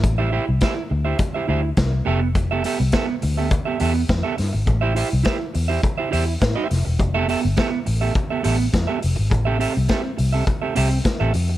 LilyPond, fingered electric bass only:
\new Staff \with { instrumentName = "Fingered electric bass" } { \clef bass \time 4/4 \key a \minor \tempo 4 = 104 a,,8. c,16 r8 d,8 r8 d,8 c,8 f,,8~ | f,,8. c,16 r8 d,8. r16 e,8 f,16 r16 g,16 gis,,16 | a,,8. c,16 r8 e,8 r8 e,8 a,16 r16 f,,16 e,,16 | f,,8. g,,16 r8 a,,8 r8 a,,8 f,16 r16 f,,16 gis,,16 |
a,,8. c,16 r8 c,8 r8 c,8 r16 a,,16 f,8 | }